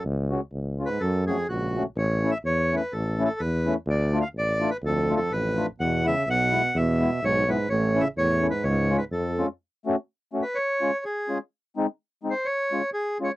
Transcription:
0.05 0.36 C#2 loud
0.30 0.41 G#3 medium
0.30 0.41 C#4 medium
0.30 0.40 F#4 medium
0.53 0.84 C#2 medium
0.79 0.89 G#3 medium
0.79 0.89 C#4 soft
0.79 0.89 F4 medium
0.86 1.01 G#2 medium
0.86 1.02 B4 medium
1.01 1.32 F#2 medium
1.01 1.25 F#2 medium
1.01 1.25 A4 medium
1.27 1.48 F2 medium
1.27 1.37 A3 medium
1.27 1.37 C#4 medium
1.27 1.37 F#4 medium
1.27 1.47 G#4 medium
1.49 1.80 A#1 medium
1.49 1.83 C#2 medium
1.49 1.83 F#4 medium
1.76 1.85 A3 medium
1.76 1.85 C#4 soft
1.76 1.85 F#4 medium
1.96 2.28 A1 loud
1.96 2.31 C#5 medium
2.24 2.34 A3 medium
2.24 2.33 C#4 medium
2.24 2.33 E4 medium
2.31 2.38 E5 medium
2.44 2.75 E2 medium
2.44 2.75 C#5 loud
2.72 2.82 A3 medium
2.72 2.82 C#4 soft
2.72 2.82 E4 medium
2.77 2.93 B4 medium
2.92 3.24 A1 medium
2.92 3.23 A4 medium
3.19 3.29 A3 medium
3.19 3.29 C#4 medium
3.19 3.29 E4 medium
3.25 3.41 A4 medium
3.40 3.71 E2 medium
3.40 3.74 B4 medium
3.66 3.76 A3 medium
3.66 3.76 C#4 soft
3.66 3.76 E4 medium
3.87 4.18 D2 loud
3.87 4.19 D5 medium
4.13 4.23 A3 medium
4.13 4.23 D4 medium
4.13 4.24 F4 medium
4.21 4.28 F5 medium
4.34 4.66 A1 medium
4.38 4.70 D5 loud
4.60 4.71 A3 medium
4.60 4.71 D4 medium
4.60 4.71 F4 medium
4.71 4.77 B4 medium
4.82 5.13 D2 medium
4.82 5.14 F2 medium
4.86 5.15 A4 medium
5.09 5.19 A3 medium
5.09 5.19 D4 medium
5.09 5.20 F4 medium
5.16 5.31 F2 medium
5.16 5.32 A4 medium
5.31 5.62 A1 medium
5.31 5.67 F2 medium
5.31 5.66 B4 loud
5.57 5.67 A3 medium
5.57 5.67 D4 medium
5.57 5.67 F4 medium
5.80 6.11 E2 medium
5.80 6.04 B2 medium
5.80 6.06 F#5 medium
6.04 6.26 C#3 medium
6.04 6.15 G#3 medium
6.04 6.15 B3 medium
6.04 6.15 E4 medium
6.04 6.29 E5 loud
6.27 6.58 B1 medium
6.27 6.72 B2 medium
6.27 6.78 F#5 loud
6.51 6.62 G#3 medium
6.51 6.62 B3 medium
6.51 6.62 E4 medium
6.75 7.05 E2 loud
6.75 7.20 B2 medium
6.75 7.25 E5 medium
7.00 7.10 G#3 medium
7.00 7.10 B3 medium
7.00 7.10 E4 medium
7.22 7.53 B1 medium
7.22 7.46 G#2 medium
7.22 7.50 C#5 loud
7.47 7.68 G#2 medium
7.47 7.58 G#3 medium
7.47 7.57 B3 medium
7.47 7.58 E4 medium
7.47 7.69 B4 medium
7.69 8.00 A1 loud
7.69 7.99 A2 medium
7.69 8.02 C#5 medium
7.95 8.05 A3 medium
7.95 8.05 C#4 medium
7.95 8.05 E4 medium
8.01 8.08 C#3 medium
8.01 8.08 E5 medium
8.16 8.47 E2 loud
8.16 8.47 A2 medium
8.16 8.47 C#5 loud
8.42 8.52 A3 medium
8.42 8.52 C#4 medium
8.42 8.52 E4 medium
8.49 8.63 G#2 medium
8.49 8.64 B4 medium
8.64 8.95 C#2 loud
8.64 8.94 G#2 medium
8.64 8.97 C#5 medium
8.90 9.00 G#3 medium
8.90 9.00 C#4 medium
8.90 9.00 F4 medium
8.97 9.04 G#2 medium
8.97 9.04 B4 medium
9.11 9.42 F2 medium
9.11 9.46 F2 medium
9.11 9.46 A4 medium
9.38 9.48 G#3 medium
9.38 9.48 C#4 medium
9.38 9.48 F4 medium
9.86 9.96 A3 medium
9.86 9.96 C#4 medium
9.86 9.96 F#4 medium
10.33 10.43 A3 medium
10.33 10.43 C#4 medium
10.33 10.44 F#4 medium
10.43 10.57 B4 medium
10.55 11.04 C#5 medium
10.81 10.91 G#3 medium
10.81 10.91 C#4 medium
10.81 10.91 F4 medium
11.05 11.38 G#4 medium
11.29 11.39 G#3 medium
11.29 11.39 C#4 medium
11.29 11.39 F4 medium
11.77 11.86 G#3 medium
11.77 11.86 C4 medium
11.77 11.87 D#4 medium
12.23 12.34 G#3 medium
12.23 12.34 C4 medium
12.23 12.34 D#4 medium
12.30 12.47 C5 medium
12.45 12.90 C#5 medium
12.72 12.82 G#3 medium
12.72 12.82 C#4 medium
12.72 12.82 F4 medium
12.94 13.18 G#4 medium
13.20 13.30 G#3 medium
13.20 13.30 C#4 soft
13.20 13.30 F4 medium
13.24 13.32 C#5 medium

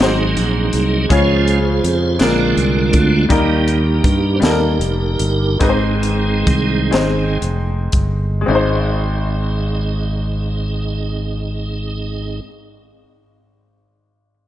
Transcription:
0.00 0.34 G#1 medium
0.00 1.06 G#2 medium
0.00 1.06 F#3 soft
0.00 0.81 G#3 medium
0.00 1.06 A#3 soft
0.00 1.07 C4 medium
0.00 0.82 D#4 medium
0.00 1.06 D#4 medium
0.00 0.82 F#4 medium
0.00 1.10 G#4 medium
0.00 0.83 C5 medium
0.00 snare medium
0.37 0.71 A#1 medium
0.37 closed hi-hat soft
0.73 1.07 C2 medium
0.73 closed hi-hat medium
1.09 1.79 C#2 medium
1.09 2.16 C#3 medium
1.09 1.58 F3 soft
1.09 1.91 G#3 medium
1.09 1.59 G#3 soft
1.09 1.92 C#4 medium
1.09 1.59 C#4 soft
1.09 2.16 F4 medium
1.09 1.93 F4 medium
1.09 2.16 G#4 medium
1.09 2.24 C5 medium
1.09 1.93 C#5 medium
1.09 kick medium
1.09 closed hi-hat medium
1.48 closed hi-hat soft
1.84 2.17 F2 medium
1.84 closed hi-hat medium
2.19 2.54 A#1 medium
2.19 3.26 A#2 medium
2.19 3.25 D3 soft
2.19 3.01 G#3 medium
2.19 3.26 G#3 soft
2.19 3.26 C4 soft
2.19 3.02 D4 medium
2.19 3.26 D4 medium
2.19 3.26 F4 medium
2.19 3.02 F4 medium
2.19 2.99 A#4 medium
2.19 3.03 A#4 medium
2.19 snare medium
2.19 closed hi-hat medium
2.57 2.90 C2 medium
2.57 closed hi-hat soft
2.93 3.27 D2 medium
2.93 kick medium
2.93 closed hi-hat medium
3.29 4.00 D#2 medium
3.29 4.38 D#3 medium
3.29 3.79 D#3 soft
3.29 4.12 G3 medium
3.29 3.79 G3 soft
3.29 4.13 A#3 medium
3.29 4.39 A#3 medium
3.29 4.13 D#4 medium
3.29 4.39 D#4 medium
3.29 4.14 A#4 medium
3.29 kick medium
3.29 closed hi-hat medium
3.33 4.39 G4 medium
3.68 closed hi-hat soft
4.04 4.39 G2 medium
4.04 kick medium
4.04 closed hi-hat medium
4.36 4.42 C5 medium
4.40 4.77 D#2 medium
4.40 5.28 G3 medium
4.40 5.29 A#3 medium
4.40 5.29 D#4 soft
4.40 4.49 A4 medium
4.40 snare medium
4.40 closed hi-hat medium
4.45 5.58 D#4 medium
4.45 5.58 G4 medium
4.45 5.66 A#4 medium
4.50 5.33 A#4 medium
4.80 5.16 F1 medium
4.80 closed hi-hat soft
5.19 5.57 G1 medium
5.19 closed hi-hat medium
5.59 6.43 G#1 medium
5.59 6.89 G#2 medium
5.59 6.92 D#3 soft
5.59 6.57 G#3 medium
5.59 6.93 G#3 soft
5.59 6.58 C4 medium
5.59 6.93 C4 soft
5.59 6.58 D#4 medium
5.59 7.39 D#4 soft
5.59 5.69 B4 medium
5.59 kick medium
5.59 closed hi-hat medium
5.65 7.39 G#4 medium
5.69 6.62 C5 medium
6.03 closed hi-hat soft
6.47 6.89 C2 medium
6.47 kick medium
6.47 closed hi-hat medium
6.91 7.38 G#1 medium
6.91 7.37 D#3 soft
6.91 8.05 G#3 medium
6.91 7.38 G#3 soft
6.91 8.05 C4 medium
6.91 7.38 C4 soft
6.91 8.06 D#4 medium
6.91 8.06 C5 medium
6.91 snare medium
6.91 closed hi-hat medium
7.42 7.89 F1 medium
7.42 closed hi-hat soft
7.92 8.44 G1 medium
7.92 kick medium
7.92 closed hi-hat medium
8.41 12.32 G#3 medium
8.46 12.39 G#1 medium
8.46 12.37 C4 medium
8.46 12.40 C4 medium
8.46 12.40 D#4 soft
8.46 12.40 G#4 soft
8.46 12.40 D#5 medium
8.51 12.41 D#4 medium
8.55 12.46 C5 medium

